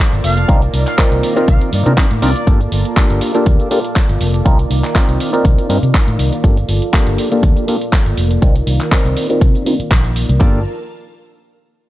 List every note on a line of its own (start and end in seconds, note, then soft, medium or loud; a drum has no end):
0.00 0.37 A#3 medium
0.00 6.40 A#3 medium
0.00 0.38 F4 medium
0.00 0.47 F4 medium
0.00 0.36 D5 medium
0.00 0.47 A5 medium
0.00 clap loud
0.13 0.21 G1 medium
0.13 closed hi-hat soft
0.24 0.43 F1 medium
0.24 0.54 F5 medium
0.24 open hi-hat loud
0.37 0.48 F4 medium
0.37 0.49 A4 medium
0.37 0.49 D5 medium
0.37 closed hi-hat medium
0.48 0.68 C2 loud
0.48 2.45 D#3 medium
0.48 0.61 C4 medium
0.48 0.61 D4 medium
0.48 0.72 D#4 medium
0.48 0.61 D#4 medium
0.48 0.61 F4 medium
0.48 0.73 F4 medium
0.48 0.61 A#4 medium
0.48 0.74 A#4 loud
0.48 2.45 D5 medium
0.48 0.74 D5 loud
0.48 2.45 F5 medium
0.48 kick loud
0.48 closed hi-hat medium
0.62 closed hi-hat soft
0.73 0.84 C2 medium
0.73 0.97 D#4 medium
0.73 0.97 F4 medium
0.73 0.98 A#4 medium
0.73 0.98 D5 medium
0.73 open hi-hat loud
0.87 0.98 F5 medium
0.87 clap soft
0.87 closed hi-hat medium
0.98 1.33 C4 medium
0.98 1.21 D#4 medium
0.98 1.33 D#4 medium
0.98 1.22 F4 medium
0.98 1.34 F4 medium
0.98 1.34 A#4 medium
0.98 1.23 A#4 loud
0.98 1.33 D5 medium
0.98 1.24 D5 loud
0.98 kick loud
0.98 clap loud
0.98 closed hi-hat medium
1.12 1.20 C2 medium
1.12 closed hi-hat soft
1.22 1.36 D#4 medium
1.22 1.37 F4 medium
1.22 1.36 A#4 medium
1.22 1.35 D5 medium
1.22 open hi-hat loud
1.36 1.70 C4 medium
1.36 1.70 D#4 medium
1.36 1.70 F4 medium
1.36 1.62 F4 soft
1.36 1.70 A#4 medium
1.36 1.61 A#4 medium
1.36 1.59 D5 medium
1.36 1.70 D5 medium
1.36 closed hi-hat soft
1.48 1.58 C2 medium
1.48 1.61 F5 medium
1.48 kick loud
1.48 closed hi-hat medium
1.61 1.72 F4 medium
1.61 1.73 A#4 medium
1.61 1.73 D5 medium
1.61 closed hi-hat soft
1.72 1.83 G2 medium
1.72 1.96 D#4 medium
1.72 1.97 F4 medium
1.72 1.97 A#4 medium
1.72 1.98 D5 medium
1.72 open hi-hat loud
1.86 1.95 C3 medium
1.86 1.93 C4 medium
1.86 1.93 D4 medium
1.86 1.93 D#4 medium
1.86 1.93 F4 medium
1.86 1.93 A#4 medium
1.86 closed hi-hat soft
1.97 2.05 C4 medium
1.97 2.05 D4 medium
1.97 2.05 D#4 medium
1.97 2.05 F4 medium
1.97 2.36 F4 medium
1.97 2.05 A#4 loud
1.97 2.34 D5 loud
1.97 kick loud
1.97 clap loud
1.97 closed hi-hat medium
2.11 2.20 A2 medium
2.11 closed hi-hat soft
2.22 2.32 C2 medium
2.22 2.30 C4 medium
2.22 2.30 D4 medium
2.22 2.30 D#4 medium
2.22 2.30 F4 medium
2.22 2.30 A#4 medium
2.22 2.47 D5 medium
2.22 open hi-hat loud
2.35 2.46 F4 medium
2.35 2.48 A#4 medium
2.35 2.47 D5 medium
2.35 closed hi-hat soft
2.46 2.66 G1 medium
2.46 2.70 A#3 medium
2.46 2.59 A#3 medium
2.46 2.60 D4 medium
2.46 4.44 F4 medium
2.46 2.60 F4 medium
2.46 2.71 F4 medium
2.46 2.60 G4 medium
2.46 2.60 A4 medium
2.46 2.72 A4 loud
2.46 2.73 D5 loud
2.46 4.44 A5 medium
2.46 kick loud
2.46 closed hi-hat medium
2.61 closed hi-hat soft
2.71 2.82 G1 medium
2.71 2.95 A#3 medium
2.71 2.96 F4 medium
2.71 2.96 A4 medium
2.71 2.97 D5 medium
2.71 open hi-hat loud
2.85 closed hi-hat soft
2.96 3.19 A#3 medium
2.96 3.32 A#3 medium
2.96 3.32 D4 medium
2.96 3.32 F4 medium
2.96 3.20 F4 medium
2.96 3.32 G4 medium
2.96 3.32 A4 medium
2.96 3.21 A4 medium
2.96 3.22 D5 loud
2.96 kick loud
2.96 clap loud
2.96 closed hi-hat medium
3.10 3.19 G1 medium
3.10 closed hi-hat soft
3.21 3.35 A#3 medium
3.21 3.35 F4 medium
3.21 3.35 A4 medium
3.21 3.33 D5 medium
3.21 open hi-hat loud
3.34 3.68 A#3 medium
3.34 3.68 D4 medium
3.34 3.69 F4 medium
3.34 3.60 F4 medium
3.34 3.69 G4 medium
3.34 3.69 A4 medium
3.34 3.59 A4 medium
3.34 3.58 D5 medium
3.34 closed hi-hat soft
3.46 3.56 D2 medium
3.46 kick loud
3.46 closed hi-hat medium
3.59 3.70 F4 medium
3.59 3.71 A4 medium
3.59 3.71 D5 medium
3.59 closed hi-hat soft
3.70 3.94 A#3 medium
3.70 3.79 A#3 medium
3.70 3.79 D4 medium
3.70 3.79 F4 medium
3.70 3.95 F4 medium
3.70 3.79 G4 medium
3.70 3.79 A4 loud
3.70 3.95 A4 medium
3.70 3.96 D5 medium
3.70 open hi-hat loud
3.84 closed hi-hat medium
3.95 4.34 A#3 medium
3.95 4.32 D5 loud
3.95 kick loud
3.95 clap loud
3.95 closed hi-hat medium
4.09 4.18 G1 medium
4.09 closed hi-hat soft
4.21 4.40 F1 medium
4.21 open hi-hat loud
4.33 4.44 F4 soft
4.33 4.46 A4 medium
4.33 4.45 D5 medium
4.33 closed hi-hat medium
4.45 4.65 C2 medium
4.45 6.42 D#3 medium
4.45 4.58 C4 medium
4.45 4.58 D4 medium
4.45 4.69 D#4 medium
4.45 4.58 D#4 medium
4.45 4.70 F4 medium
4.45 4.58 F4 medium
4.45 4.58 A#4 medium
4.45 4.70 A#4 medium
4.45 6.42 D5 medium
4.45 4.71 D5 medium
4.45 6.42 F5 medium
4.45 kick loud
4.45 closed hi-hat medium
4.59 closed hi-hat soft
4.70 4.80 C2 medium
4.70 4.93 D#4 medium
4.70 4.94 F4 medium
4.70 4.95 A#4 medium
4.70 4.95 D5 medium
4.70 open hi-hat loud
4.84 clap soft
4.84 closed hi-hat medium
4.95 5.30 C4 medium
4.95 5.30 D#4 medium
4.95 5.19 F4 medium
4.95 5.30 F4 medium
4.95 5.30 A#4 medium
4.95 5.30 D5 medium
4.95 5.21 D5 medium
4.95 kick loud
4.95 clap loud
4.95 closed hi-hat medium
5.08 5.17 C2 medium
5.08 closed hi-hat soft
5.19 5.33 D#4 medium
5.19 5.34 F4 medium
5.19 5.33 A#4 medium
5.19 5.32 D5 medium
5.19 open hi-hat loud
5.33 5.67 C4 medium
5.33 5.67 D#4 medium
5.33 5.67 F4 medium
5.33 5.59 F4 soft
5.33 5.67 A#4 medium
5.33 5.58 A#4 medium
5.33 5.67 D5 medium
5.33 5.56 D5 medium
5.33 closed hi-hat medium
5.45 5.55 C2 medium
5.45 kick loud
5.45 closed hi-hat medium
5.58 5.69 F4 medium
5.58 5.70 A#4 medium
5.58 5.69 D5 medium
5.58 muted fingered electric bass stroke soft
5.58 closed hi-hat soft
5.69 5.80 G2 medium
5.69 5.77 C4 medium
5.69 5.77 D4 medium
5.69 5.93 D#4 medium
5.69 5.77 D#4 medium
5.69 5.77 F4 medium
5.69 5.94 F4 medium
5.69 5.78 A#4 loud
5.69 5.94 A#4 medium
5.69 5.95 D5 medium
5.69 open hi-hat loud
5.83 5.91 C3 medium
5.83 closed hi-hat soft
5.94 6.32 D#4 medium
5.94 6.33 F4 medium
5.94 6.32 A#4 loud
5.94 6.31 D5 loud
5.94 kick loud
5.94 clap loud
5.94 closed hi-hat medium
6.08 6.16 A2 medium
6.08 closed hi-hat soft
6.19 6.29 C2 medium
6.19 open hi-hat loud
6.32 6.43 F4 medium
6.32 6.44 A#4 medium
6.32 6.44 D5 medium
6.32 closed hi-hat medium
6.43 6.63 G1 loud
6.43 6.67 A#3 medium
6.43 6.56 A#3 medium
6.43 10.37 A#3 medium
6.43 6.56 D4 medium
6.43 8.40 F4 medium
6.43 6.56 F4 medium
6.43 6.68 F4 medium
6.43 6.57 G4 medium
6.43 6.57 A4 medium
6.43 6.69 A4 loud
6.43 6.69 D5 medium
6.43 8.40 A5 medium
6.43 kick loud
6.43 closed hi-hat medium
6.57 closed hi-hat soft
6.68 6.79 G1 medium
6.68 6.92 A#3 medium
6.68 6.92 F4 medium
6.68 6.93 A4 medium
6.68 6.93 D5 medium
6.68 open hi-hat loud
6.82 closed hi-hat medium
6.93 7.16 A#3 medium
6.93 7.28 A#3 medium
6.93 7.28 D4 medium
6.93 7.28 F4 medium
6.93 7.29 G4 medium
6.93 7.29 A4 medium
6.93 kick loud
6.93 clap loud
6.93 closed hi-hat medium
7.07 7.15 G1 medium
7.07 closed hi-hat soft
7.17 7.31 A#3 medium
7.17 7.32 F4 medium
7.17 7.31 A4 medium
7.17 7.30 D5 medium
7.17 open hi-hat loud
7.31 7.65 A#3 medium
7.31 7.65 D4 medium
7.31 7.65 F4 medium
7.31 7.57 F4 medium
7.31 7.65 G4 medium
7.31 7.56 A4 medium
7.31 7.65 A4 loud
7.31 7.54 D5 medium
7.31 closed hi-hat medium
7.43 7.53 D2 medium
7.43 kick loud
7.43 closed hi-hat medium
7.56 7.67 F4 medium
7.56 7.68 A4 medium
7.56 7.68 D5 medium
7.56 closed hi-hat soft
7.67 7.91 A#3 medium
7.67 7.76 A#3 medium
7.67 7.76 D4 medium
7.67 7.76 F4 medium
7.67 7.91 F4 medium
7.67 7.76 G4 medium
7.67 7.76 A4 loud
7.67 7.92 A4 medium
7.67 7.93 D5 medium
7.67 open hi-hat loud
7.81 closed hi-hat medium
7.92 8.31 A#3 medium
7.92 8.31 F4 medium
7.92 kick loud
7.92 clap loud
7.92 closed hi-hat medium
8.06 8.15 G1 medium
8.06 closed hi-hat soft
8.17 8.37 F1 medium
8.17 open hi-hat loud
8.30 8.41 F4 medium
8.30 8.43 A4 medium
8.30 8.42 D5 medium
8.30 closed hi-hat medium
8.42 8.61 C2 medium
8.42 10.39 D#3 medium
8.42 8.54 C4 medium
8.42 8.55 D4 medium
8.42 8.65 D#4 medium
8.42 8.55 D#4 medium
8.42 8.66 F4 medium
8.42 8.55 F4 medium
8.42 8.55 A#4 medium
8.42 8.67 A#4 loud
8.42 10.39 D5 medium
8.42 10.39 F5 medium
8.42 kick loud
8.42 closed hi-hat medium
8.56 closed hi-hat soft
8.66 8.77 C2 medium
8.66 8.90 D#4 medium
8.66 8.91 F4 medium
8.66 8.91 A#4 medium
8.66 8.92 D5 medium
8.66 open hi-hat loud
8.80 clap soft
8.80 closed hi-hat medium
8.91 9.27 C4 medium
8.91 9.14 D#4 medium
8.91 9.27 D#4 medium
8.91 9.27 F4 medium
8.91 9.27 A#4 loud
8.91 9.27 D5 medium
8.91 kick loud
8.91 clap loud
8.91 closed hi-hat medium
9.05 9.14 C2 medium
9.05 closed hi-hat soft
9.16 9.30 D#4 medium
9.16 9.30 F4 medium
9.16 9.29 A#4 medium
9.16 9.28 D5 medium
9.16 open hi-hat loud
9.30 9.63 C4 medium
9.30 9.64 D#4 medium
9.30 9.64 F4 medium
9.30 9.55 F4 medium
9.30 9.64 A#4 loud
9.30 9.54 A#4 medium
9.30 9.64 D5 medium
9.30 closed hi-hat medium
9.41 9.51 C3 medium
9.41 kick loud
9.41 closed hi-hat medium
9.54 9.65 F4 medium
9.54 9.66 A#4 medium
9.54 9.66 D5 medium
9.54 closed hi-hat soft
9.65 9.74 C4 medium
9.65 9.74 D4 medium
9.65 9.89 D#4 medium
9.65 9.74 D#4 medium
9.65 9.90 F4 medium
9.65 9.74 F4 medium
9.65 9.74 A#4 loud
9.65 9.90 A#4 medium
9.65 9.91 D5 medium
9.65 open hi-hat loud
9.79 muted fingered electric bass stroke soft
9.79 closed hi-hat medium
9.90 10.24 A#1 loud
9.90 10.29 D#4 medium
9.90 10.29 F4 medium
9.90 kick loud
9.90 clap loud
9.90 closed hi-hat medium
10.05 closed hi-hat soft
10.16 open hi-hat loud
10.28 10.38 C2 loud
10.28 10.40 F4 medium
10.28 10.41 A#4 medium
10.28 10.40 D5 medium
10.28 closed hi-hat medium
10.40 10.60 A#3 medium
10.40 10.59 A#3 medium
10.40 10.59 D4 medium
10.40 10.64 F4 medium
10.40 10.61 F4 medium
10.40 10.60 F4 medium
10.40 10.60 G4 medium
10.40 10.61 A4 medium
10.40 10.60 A4 medium
10.40 10.64 A#4 medium
10.40 10.62 D5 medium
10.40 10.64 A5 medium
10.40 kick loud